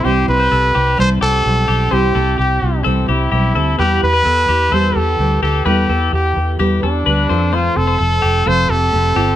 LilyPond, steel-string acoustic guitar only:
\new Staff \with { instrumentName = "Steel-string acoustic guitar" } { \time 4/4 \key c \major \tempo 4 = 128 <c e g c' e' c''>8 <g c' e'>4 <g c' e' c''>8 <c e g c' e' c''>8 <g c' e' c''>8 <g c' e' c''>4 | <c e g c' e' c''>8 <g c' e' c''>4 <g c' e' c''>8 <c e g c' e' c''>8 <g c' e' c''>8 <g c' e' c''>8 <g c' e' c''>8 | <e g e' g' b'>8 <e' g' b'>4 <e' g' b'>8 <e g e' g' b'>8 <e' g' b'>8 <g e' g' b'>8 <e' g' b'>8 | <e g e' g' b'>8 <e' g' b'>4 <e' g' b'>8 <e g e' g' b'>8 <e' g' b'>8 <g e' g' b'>8 <c' f' a'>8 |
<f a c' f' a'>8 <c' f' a'>4. <f a c' f' a'>8 <c' f' a'>8 <a c' f' a'>4 | }